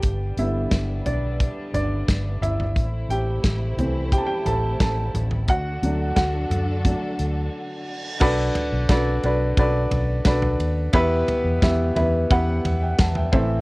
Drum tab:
CC |----------------|----------------|----------------|x---------------|
RD |----------------|----------------|----------------|--x-x-x-x-x-x-x-|
HH |x-x-x-x-x-x-x-x-|x-x-x-x-x-x-x-x-|x-x-x-x-x-x-----|----------------|
SD |----o-------o---|----o-------o---|----o-----------|----o-------o---|
FT |------o---o---oo|------o---o---oo|------o---------|--o-------o--o--|
BD |o---o---o---o---|o---o---o---o---|o---o---o-------|o---o---o---o---|

CC |----------------|
RD |x-x-x-x-x-x-x-x-|
HH |----------------|
SD |----o-------o---|
FT |--o---o---o--o--|
BD |o---o---o---o-o-|